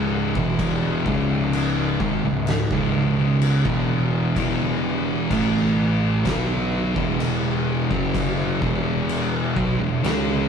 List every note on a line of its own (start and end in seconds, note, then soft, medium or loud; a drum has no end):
0.00 0.31 C#1 loud
0.00 0.34 C#2 medium
0.00 0.34 G#2 loud
0.00 0.34 C#3 loud
0.35 1.02 E1 loud
0.35 1.05 E2 loud
0.35 1.05 B2 loud
0.35 1.05 E3 loud
0.35 kick loud
0.59 kick loud
0.59 crash medium
1.05 1.96 C#1 loud
1.05 1.99 C#2 medium
1.05 1.99 G#2 loud
1.05 1.99 C#3 loud
1.05 kick loud
1.53 crash medium
2.00 2.22 G#1 loud
2.00 2.22 G#2 loud
2.00 2.23 D#3 loud
2.00 kick loud
2.24 2.68 C#1 medium
2.24 2.62 C#2 medium
2.24 2.62 G#2 medium
2.47 snare loud
2.47 crash medium
2.71 3.61 C#1 loud
2.71 3.64 C#2 loud
2.71 3.65 G#2 loud
2.71 3.65 C#3 loud
2.71 kick loud
3.42 crash medium
3.65 4.32 E1 loud
3.65 4.35 E2 medium
3.65 4.35 B2 loud
3.65 4.35 E3 loud
3.65 kick loud
4.36 5.27 E1 loud
4.36 5.29 E2 loud
4.36 5.30 B2 loud
4.36 5.30 E3 loud
4.36 kick loud
4.36 crash medium
5.30 6.21 A1 loud
5.30 6.23 A2 medium
5.30 6.24 E3 loud
5.30 6.24 A3 loud
5.30 kick loud
5.30 crash medium
5.57 snare soft
6.24 6.92 B1 loud
6.24 6.94 B2 medium
6.24 6.95 F#3 medium
6.24 6.95 B3 loud
6.24 kick loud
6.24 snare loud
6.24 crash medium
6.95 7.87 E1 loud
6.95 7.89 E2 medium
6.95 7.89 B2 loud
6.95 7.89 E3 loud
6.95 kick loud
7.20 crash medium
7.90 8.57 F#1 loud
7.90 8.60 F#2 medium
7.90 8.60 C#3 loud
7.90 8.60 F#3 loud
7.90 kick loud
8.15 kick loud
8.15 crash medium
8.60 9.52 E1 loud
8.60 9.54 E2 loud
8.60 9.54 B2 medium
8.60 9.55 E3 loud
8.60 kick loud
9.09 crash medium
9.55 9.78 B1 loud
9.55 9.78 B2 medium
9.55 9.78 F#3 loud
9.55 kick loud
9.79 10.02 E1 medium
9.79 10.03 E2 medium
9.79 10.03 B2 medium
10.03 10.47 C#2 loud
10.03 10.48 C#3 loud
10.03 10.48 G#3 loud
10.03 10.48 C#4 loud
10.03 snare loud
10.03 crash medium